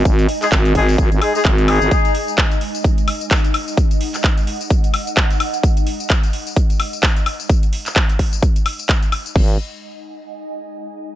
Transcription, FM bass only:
0.05 G#1
0.52 G#1
0.75 G#1
0.98 G#1
1.12 G#1
1.45 G#1
1.82 G#1
9.36 G#1

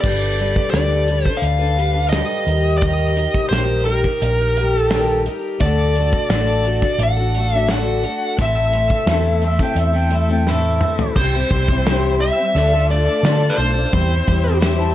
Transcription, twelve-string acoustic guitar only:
0.03 G3 D4 A4 B4
0.40 G3 D4 A4 B4
0.72 G3 D4 A4 B4
1.08 G3 D4 A4 B4
1.25 A4 B4
1.30 D4
1.59 D4 A4 B4
1.76 G3 D4 A4 B4
1.93 D4 A4 B4
2.11 G3 A4 B4
2.45 G3 D#4 G4 A#4
2.81 D#3 G3 D#4 G4 A#4
3.15 G3 D#4 G4 A#4
3.50 D#3 G3 D#4 G4 A#4
3.85 G3 D#4 G4 A#4
4.03 D#4 G4 A#4
4.38 D#4 G4 A#4
4.58 G3 D#4 G4 A#4
4.74 D#4 G4 A#4
4.92 D#3 G3 D#4 G4 A#4
5.26 G3 D#4 G4 A#4
5.61 D3 A3 D4 F#4 A4
5.96 A3 D4 F#4 A4
6.32 D3 A3 D4 F#4 A4
6.64 A3 D4 F#4 A4
6.82 D4 F#4 A4
7.17 D4 F#4 A4
7.37 A3 D4 F#4 A4
7.53 D4 F#4 A4
7.71 D3 A3 D4 F#4 A4
8.03 A3 D4 F#4 A4
8.38 A2 E3 A3 C4 E4 A4
8.73 A3 C4 E4 A4
9.08 A2 E3 A3 C4 E4 A4
9.43 A3 C4 E4 A4
9.60 A3 C4 E4 A4
9.93 A3 C4 E4 A4
10.11 A3 C4 E4 A4
10.29 C4 E4 A4
10.33 A3
10.47 A2 E3 A3 C4 E4 A4
10.82 A3 C4 E4 A4
11.17 C3 E3 G3 C4 E4 C5
11.33 G3 C4 E4 C5
11.51 G3 C4 E4 C5
11.69 C4 E4 C5
11.73 G3
11.86 C3 E3 G3 C4 E4 C5
12.21 G3 C4 E4 C5
12.38 C4 E4 C5
12.42 G3
12.55 D3 A3 D4 F4 A4
12.73 D4 F4 A4
12.89 A3 D4 F4 A4
13.24 D3 A3 D4 F4 A4
13.58 A3 D4 F4 A4
13.74 D4 F4 A4
13.92 E3 G3 C4 E4 C5
14.10 C4 E4 C5
14.27 G3 C4 E4
14.31 C5
14.46 C4 E4 C5
14.61 E3 G3 C4 E4 C5

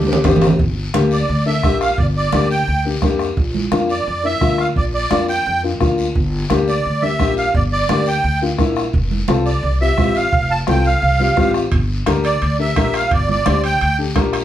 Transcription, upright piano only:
0.08 A#3 D4 G4
0.24 A#3 D4 G4
0.94 A#3 D4 G4
1.46 A#3 D4 A4
1.63 A#3 D4 G4
2.33 A#3 D4 G4
2.85 A#3 D4 G4
3.03 A#3 D4 G4
3.72 A#3 D4 F4
4.23 A#3 D4 E4
4.41 A#3 D4 F4
5.11 A#3 D4 F4
5.63 A#3 D4 F4
5.80 A#3 D4 F4
6.50 A#3 D4 G4
7.02 A#3 D4 G4
7.20 A#3 D4 G4
7.90 A#3 D4 G4
8.42 A#3 D4 F4
8.59 A#3 D4 E4
9.28 C4 F4 A4
9.81 C4 F4 G4
9.99 C4 F4 G4
10.68 C4 F4 A4
11.20 C4 F4 G4
11.37 C4 F4 G4
12.06 D4 G4 A#4
12.59 D4 G4 A#4
12.77 D4 G4 A#4
13.46 D4 G4 C5
13.98 D4 G4 A4
14.16 D4 G4 A#4

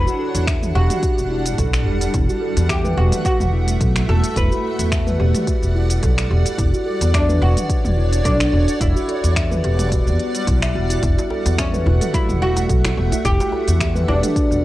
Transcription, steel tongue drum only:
0.07 F#4
0.19 A4
0.47 E5
0.75 G4
1.03 F#4
1.31 E4
1.58 A4
1.86 G4
2.14 E4
2.29 F#4
2.41 A4
2.69 E5
2.84 B4
2.97 F#4
3.25 F#4
3.53 E4
3.80 A4
4.08 F#4
4.36 E4
4.51 F#4
4.64 A4
4.92 E5
5.07 B4
5.19 G4
5.47 F#4
5.75 E4
6.03 A4
6.30 G4
6.58 E4
6.73 F#4
6.86 A4
7.14 E5
7.29 B4
7.42 F#4
7.69 F#4
7.97 E4
8.25 A4
8.53 F#4
8.80 E4
8.96 F#4
9.08 A4
9.36 E5
9.51 B4
9.64 G4
9.92 F#4
10.19 B3
10.47 E4
10.62 E5
10.75 F#4
10.90 E4
11.03 E4
11.18 F#4
11.30 A4
11.58 E5
11.73 B4
11.86 F#4
12.01 A4
12.14 F#4
12.41 E4
12.69 A4
12.97 F#4
13.25 E4
13.40 F#4
13.53 A4
13.80 E5
13.95 B4
14.08 G4
14.23 A4
14.36 F#4

